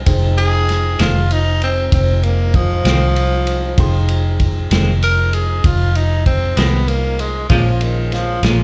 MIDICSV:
0, 0, Header, 1, 7, 480
1, 0, Start_track
1, 0, Key_signature, -4, "minor"
1, 0, Tempo, 619835
1, 52, Time_signature, 12, 3, 24, 8
1, 6688, End_track
2, 0, Start_track
2, 0, Title_t, "Grand piano"
2, 0, Program_c, 0, 0
2, 46, Note_on_c, 0, 72, 65
2, 47, Note_on_c, 0, 63, 57
2, 48, Note_on_c, 0, 79, 58
2, 49, Note_on_c, 0, 68, 55
2, 2895, Note_off_c, 0, 63, 0
2, 2895, Note_off_c, 0, 72, 0
2, 2896, Note_off_c, 0, 79, 0
2, 2897, Note_off_c, 0, 68, 0
2, 2935, Note_on_c, 0, 79, 56
2, 2937, Note_on_c, 0, 63, 53
2, 2940, Note_on_c, 0, 68, 59
2, 2940, Note_on_c, 0, 84, 62
2, 5781, Note_off_c, 0, 79, 0
2, 5782, Note_off_c, 0, 63, 0
2, 5784, Note_off_c, 0, 68, 0
2, 5784, Note_off_c, 0, 84, 0
2, 5809, Note_on_c, 0, 61, 51
2, 5812, Note_on_c, 0, 68, 49
2, 5814, Note_on_c, 0, 65, 46
2, 5815, Note_on_c, 0, 72, 49
2, 6688, Note_off_c, 0, 61, 0
2, 6688, Note_off_c, 0, 65, 0
2, 6688, Note_off_c, 0, 68, 0
2, 6688, Note_off_c, 0, 72, 0
2, 6688, End_track
3, 0, Start_track
3, 0, Title_t, "Tenor saxophone"
3, 0, Program_c, 1, 66
3, 293, Note_on_c, 1, 68, 96
3, 780, Note_on_c, 1, 65, 75
3, 792, Note_off_c, 1, 68, 0
3, 1023, Note_on_c, 1, 63, 87
3, 1035, Note_off_c, 1, 65, 0
3, 1249, Note_off_c, 1, 63, 0
3, 1267, Note_on_c, 1, 60, 88
3, 1491, Note_off_c, 1, 60, 0
3, 1504, Note_on_c, 1, 60, 73
3, 1733, Note_on_c, 1, 58, 76
3, 1745, Note_off_c, 1, 60, 0
3, 1980, Note_on_c, 1, 53, 90
3, 1991, Note_off_c, 1, 58, 0
3, 3383, Note_off_c, 1, 53, 0
3, 3900, Note_on_c, 1, 70, 91
3, 4134, Note_on_c, 1, 68, 74
3, 4146, Note_off_c, 1, 70, 0
3, 4381, Note_on_c, 1, 65, 78
3, 4392, Note_off_c, 1, 68, 0
3, 4614, Note_on_c, 1, 63, 84
3, 4626, Note_off_c, 1, 65, 0
3, 4844, Note_off_c, 1, 63, 0
3, 4852, Note_on_c, 1, 60, 75
3, 5089, Note_on_c, 1, 59, 86
3, 5101, Note_off_c, 1, 60, 0
3, 5331, Note_on_c, 1, 58, 72
3, 5342, Note_off_c, 1, 59, 0
3, 5573, Note_on_c, 1, 56, 65
3, 5585, Note_off_c, 1, 58, 0
3, 5799, Note_off_c, 1, 56, 0
3, 5804, Note_on_c, 1, 53, 78
3, 6066, Note_on_c, 1, 51, 78
3, 6077, Note_off_c, 1, 53, 0
3, 6302, Note_on_c, 1, 53, 91
3, 6313, Note_off_c, 1, 51, 0
3, 6529, Note_off_c, 1, 53, 0
3, 6688, End_track
4, 0, Start_track
4, 0, Title_t, "Tonewheel organ"
4, 0, Program_c, 2, 16
4, 50, Note_on_c, 2, 63, 69
4, 51, Note_on_c, 2, 56, 71
4, 52, Note_on_c, 2, 53, 67
4, 53, Note_on_c, 2, 60, 64
4, 2899, Note_off_c, 2, 56, 0
4, 2899, Note_off_c, 2, 63, 0
4, 2900, Note_off_c, 2, 53, 0
4, 2901, Note_off_c, 2, 60, 0
4, 2915, Note_on_c, 2, 56, 66
4, 2916, Note_on_c, 2, 53, 65
4, 2917, Note_on_c, 2, 63, 66
4, 5773, Note_off_c, 2, 56, 0
4, 5774, Note_off_c, 2, 53, 0
4, 5775, Note_off_c, 2, 63, 0
4, 5798, Note_on_c, 2, 65, 67
4, 5802, Note_on_c, 2, 58, 65
4, 5802, Note_on_c, 2, 61, 68
4, 5805, Note_on_c, 2, 56, 66
4, 6688, Note_off_c, 2, 56, 0
4, 6688, Note_off_c, 2, 58, 0
4, 6688, Note_off_c, 2, 61, 0
4, 6688, Note_off_c, 2, 65, 0
4, 6688, End_track
5, 0, Start_track
5, 0, Title_t, "Clean electric guitar"
5, 0, Program_c, 3, 27
5, 768, Note_on_c, 3, 60, 57
5, 770, Note_on_c, 3, 56, 57
5, 772, Note_on_c, 3, 51, 53
5, 776, Note_on_c, 3, 41, 45
5, 913, Note_off_c, 3, 60, 0
5, 914, Note_off_c, 3, 56, 0
5, 915, Note_off_c, 3, 51, 0
5, 917, Note_off_c, 3, 41, 0
5, 2206, Note_on_c, 3, 60, 59
5, 2210, Note_on_c, 3, 56, 59
5, 2215, Note_on_c, 3, 41, 50
5, 2215, Note_on_c, 3, 51, 54
5, 2352, Note_off_c, 3, 60, 0
5, 2353, Note_off_c, 3, 56, 0
5, 2356, Note_off_c, 3, 41, 0
5, 2356, Note_off_c, 3, 51, 0
5, 3654, Note_on_c, 3, 60, 60
5, 3655, Note_on_c, 3, 56, 64
5, 3659, Note_on_c, 3, 41, 49
5, 3660, Note_on_c, 3, 51, 53
5, 3795, Note_off_c, 3, 60, 0
5, 3796, Note_off_c, 3, 56, 0
5, 3798, Note_off_c, 3, 41, 0
5, 3798, Note_off_c, 3, 51, 0
5, 5091, Note_on_c, 3, 60, 61
5, 5096, Note_on_c, 3, 56, 56
5, 5101, Note_on_c, 3, 51, 51
5, 5105, Note_on_c, 3, 41, 50
5, 5234, Note_off_c, 3, 60, 0
5, 5237, Note_off_c, 3, 56, 0
5, 5239, Note_off_c, 3, 51, 0
5, 5241, Note_off_c, 3, 41, 0
5, 5812, Note_on_c, 3, 46, 55
5, 5816, Note_on_c, 3, 53, 65
5, 5816, Note_on_c, 3, 56, 69
5, 5821, Note_on_c, 3, 61, 73
5, 5955, Note_off_c, 3, 46, 0
5, 5957, Note_off_c, 3, 53, 0
5, 5957, Note_off_c, 3, 56, 0
5, 5959, Note_off_c, 3, 61, 0
5, 6531, Note_on_c, 3, 61, 63
5, 6532, Note_on_c, 3, 56, 50
5, 6540, Note_on_c, 3, 53, 54
5, 6544, Note_on_c, 3, 46, 51
5, 6674, Note_off_c, 3, 61, 0
5, 6675, Note_off_c, 3, 56, 0
5, 6679, Note_off_c, 3, 53, 0
5, 6681, Note_off_c, 3, 46, 0
5, 6688, End_track
6, 0, Start_track
6, 0, Title_t, "Fingered electric bass"
6, 0, Program_c, 4, 33
6, 52, Note_on_c, 4, 29, 86
6, 740, Note_off_c, 4, 29, 0
6, 773, Note_on_c, 4, 29, 86
6, 1460, Note_off_c, 4, 29, 0
6, 1489, Note_on_c, 4, 29, 93
6, 2178, Note_off_c, 4, 29, 0
6, 2204, Note_on_c, 4, 36, 76
6, 2895, Note_off_c, 4, 36, 0
6, 2926, Note_on_c, 4, 29, 79
6, 3616, Note_off_c, 4, 29, 0
6, 3650, Note_on_c, 4, 29, 92
6, 4338, Note_off_c, 4, 29, 0
6, 4370, Note_on_c, 4, 29, 90
6, 5059, Note_off_c, 4, 29, 0
6, 5088, Note_on_c, 4, 36, 72
6, 5778, Note_off_c, 4, 36, 0
6, 5809, Note_on_c, 4, 34, 86
6, 6499, Note_off_c, 4, 34, 0
6, 6526, Note_on_c, 4, 34, 96
6, 6688, Note_off_c, 4, 34, 0
6, 6688, End_track
7, 0, Start_track
7, 0, Title_t, "Drums"
7, 49, Note_on_c, 9, 51, 82
7, 50, Note_on_c, 9, 36, 88
7, 127, Note_off_c, 9, 51, 0
7, 128, Note_off_c, 9, 36, 0
7, 294, Note_on_c, 9, 51, 58
7, 372, Note_off_c, 9, 51, 0
7, 533, Note_on_c, 9, 51, 52
7, 546, Note_on_c, 9, 38, 26
7, 611, Note_off_c, 9, 51, 0
7, 623, Note_off_c, 9, 38, 0
7, 769, Note_on_c, 9, 51, 74
7, 782, Note_on_c, 9, 38, 103
7, 847, Note_off_c, 9, 51, 0
7, 859, Note_off_c, 9, 38, 0
7, 1012, Note_on_c, 9, 51, 55
7, 1089, Note_off_c, 9, 51, 0
7, 1252, Note_on_c, 9, 51, 48
7, 1329, Note_off_c, 9, 51, 0
7, 1488, Note_on_c, 9, 36, 97
7, 1488, Note_on_c, 9, 51, 77
7, 1566, Note_off_c, 9, 36, 0
7, 1566, Note_off_c, 9, 51, 0
7, 1730, Note_on_c, 9, 51, 45
7, 1807, Note_off_c, 9, 51, 0
7, 1966, Note_on_c, 9, 51, 53
7, 1967, Note_on_c, 9, 36, 75
7, 2044, Note_off_c, 9, 36, 0
7, 2044, Note_off_c, 9, 51, 0
7, 2208, Note_on_c, 9, 51, 75
7, 2221, Note_on_c, 9, 38, 95
7, 2286, Note_off_c, 9, 51, 0
7, 2298, Note_off_c, 9, 38, 0
7, 2449, Note_on_c, 9, 51, 52
7, 2527, Note_off_c, 9, 51, 0
7, 2686, Note_on_c, 9, 51, 56
7, 2763, Note_off_c, 9, 51, 0
7, 2926, Note_on_c, 9, 36, 94
7, 2926, Note_on_c, 9, 51, 80
7, 3003, Note_off_c, 9, 36, 0
7, 3003, Note_off_c, 9, 51, 0
7, 3164, Note_on_c, 9, 51, 57
7, 3241, Note_off_c, 9, 51, 0
7, 3405, Note_on_c, 9, 51, 59
7, 3406, Note_on_c, 9, 36, 66
7, 3482, Note_off_c, 9, 51, 0
7, 3483, Note_off_c, 9, 36, 0
7, 3648, Note_on_c, 9, 51, 80
7, 3660, Note_on_c, 9, 38, 96
7, 3725, Note_off_c, 9, 51, 0
7, 3738, Note_off_c, 9, 38, 0
7, 3892, Note_on_c, 9, 51, 62
7, 3969, Note_off_c, 9, 51, 0
7, 4128, Note_on_c, 9, 51, 55
7, 4206, Note_off_c, 9, 51, 0
7, 4369, Note_on_c, 9, 36, 95
7, 4369, Note_on_c, 9, 51, 76
7, 4446, Note_off_c, 9, 36, 0
7, 4446, Note_off_c, 9, 51, 0
7, 4610, Note_on_c, 9, 51, 53
7, 4687, Note_off_c, 9, 51, 0
7, 4849, Note_on_c, 9, 36, 74
7, 4849, Note_on_c, 9, 51, 52
7, 4926, Note_off_c, 9, 36, 0
7, 4927, Note_off_c, 9, 51, 0
7, 5088, Note_on_c, 9, 51, 79
7, 5100, Note_on_c, 9, 38, 106
7, 5165, Note_off_c, 9, 51, 0
7, 5177, Note_off_c, 9, 38, 0
7, 5329, Note_on_c, 9, 51, 53
7, 5406, Note_off_c, 9, 51, 0
7, 5568, Note_on_c, 9, 51, 47
7, 5646, Note_off_c, 9, 51, 0
7, 5805, Note_on_c, 9, 51, 67
7, 5807, Note_on_c, 9, 36, 94
7, 5882, Note_off_c, 9, 51, 0
7, 5885, Note_off_c, 9, 36, 0
7, 6046, Note_on_c, 9, 51, 52
7, 6123, Note_off_c, 9, 51, 0
7, 6288, Note_on_c, 9, 51, 45
7, 6301, Note_on_c, 9, 38, 30
7, 6366, Note_off_c, 9, 51, 0
7, 6378, Note_off_c, 9, 38, 0
7, 6528, Note_on_c, 9, 51, 67
7, 6540, Note_on_c, 9, 38, 101
7, 6605, Note_off_c, 9, 51, 0
7, 6618, Note_off_c, 9, 38, 0
7, 6688, End_track
0, 0, End_of_file